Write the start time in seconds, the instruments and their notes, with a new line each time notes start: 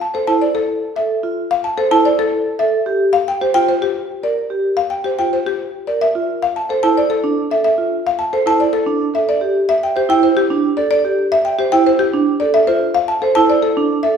0.01 marimba A5
0.14 marimba A4, vibraphone C5
0.27 vibraphone E4, marimba A5
0.41 marimba D5
0.55 marimba A4
0.96 vibraphone A4, marimba E5
1.23 vibraphone F4
1.51 marimba F5
1.64 marimba A5
1.78 marimba A4, vibraphone C5
1.91 vibraphone E4, marimba A5
2.05 marimba D5
2.19 marimba A4
2.59 vibraphone A4, marimba E5
2.86 vibraphone G4
3.13 marimba F5
3.28 marimba G5
3.41 marimba G4, vibraphone C5
3.54 vibraphone F4, marimba G5
3.69 marimba C5
3.82 marimba G4
4.23 vibraphone A#4, marimba D5
4.50 vibraphone G4
4.77 marimba F5
4.90 marimba G5
5.04 marimba G4, vibraphone C5
5.19 vibraphone F4, marimba G5
5.33 marimba C5
5.47 marimba G4
5.87 vibraphone A#4, marimba D5
6.01 marimba E5
6.15 vibraphone F4
6.43 marimba F5
6.56 marimba A5
6.69 marimba A4, vibraphone C5
6.83 vibraphone E4, marimba A5
6.97 marimba D5
7.10 marimba A4
7.24 vibraphone D4
7.51 vibraphone A4, marimba E5
7.64 marimba E5
7.78 vibraphone F4
8.07 marimba F5
8.19 marimba A5
8.33 marimba A4, vibraphone C5
8.46 vibraphone E4, marimba A5
8.60 marimba D5
8.73 marimba A4
8.86 vibraphone D4
9.14 vibraphone A4, marimba E5
9.29 marimba D5
9.41 vibraphone G4
9.69 marimba E5
9.83 marimba G5
9.96 marimba G4, vibraphone C5
10.09 vibraphone E4, marimba G5
10.23 marimba C5
10.37 marimba G4
10.50 vibraphone D4
10.77 vibraphone A4, marimba D5
10.91 marimba D5
11.05 vibraphone G4
11.32 marimba E5
11.45 marimba G5
11.59 marimba G4, vibraphone C5
11.72 vibraphone E4, marimba G5
11.87 marimba C5
11.99 marimba G4
12.14 vibraphone D4
12.40 vibraphone A4, marimba D5
12.54 marimba E5
12.67 vibraphone F4, marimba C5
12.95 marimba F5
13.08 marimba A5
13.22 marimba A4, vibraphone C5
13.35 vibraphone E4, marimba A5
13.50 marimba D5
13.63 marimba A4
13.77 vibraphone D4
14.03 vibraphone A4, marimba E5